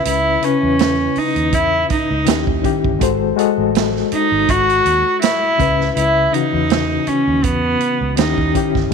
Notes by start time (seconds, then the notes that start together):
Already playing: C#3 C#4 E4 B4
0.05 C#2 E4, closed hi-hat
0.41 C#3 C#4 E4 B4, closed hi-hat
0.63 E2
0.79 snare, closed hi-hat
1.16 D#4, muted fingered electric bass stroke, open hi-hat
1.36 D#2, closed hi-hat
1.53 E2 E4, kick, closed hi-hat
1.90 D#4, kick, closed hi-hat
2.11 C#2
2.25 D#2 D#3 C#4 E4 G4, snare, closed hi-hat
2.47 D#2, kick
2.62 D#3 C#4 E4 G4, kick, closed hi-hat
2.84 G1, kick
2.99 G#1 G#3 F#4 A4 C5, kick, closed hi-hat
3.36 G#3 F#4 A4 D#5, closed hi-hat
3.58 A1
3.75 snare, closed hi-hat
3.96 snare
4.12 D#4, muted fingered electric bass stroke, closed hi-hat
4.32 G#1
4.49 G#1 F#4, kick, closed hi-hat
4.69 closed hi-hat
4.86 D#2, closed hi-hat
5.22 E4, snare, closed hi-hat
5.58 C#2 C#3 C#4 E4 B4, kick, closed hi-hat
5.81 snare
5.97 C#2 E4, closed hi-hat
6.32 C#3 E3 C#4 D#4 F#4, closed hi-hat
6.53 E2
6.70 snare, closed hi-hat
7.07 C#4, muted fingered electric bass stroke, closed hi-hat
7.28 D#2
7.43 E2 B3, kick, closed hi-hat
7.81 closed hi-hat
8.01 C#2
8.17 D#2 D#3 C#4 D#4 E4 G4, snare, closed hi-hat
8.38 D#2, kick
8.54 D#3 C#4 E4 G4, kick, closed hi-hat
8.75 G1, kick, snare